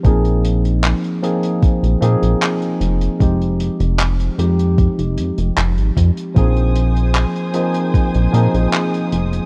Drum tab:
HH |xxxxxxxxxxxxxxxx|xxxxxxxxxxxxxxxx|xxxxxxxxxxxxxxxx|
CP |----x-------x---|----x-------x---|----x-------x---|
BD |o-------o-------|o-------o-----o-|o-------o-------|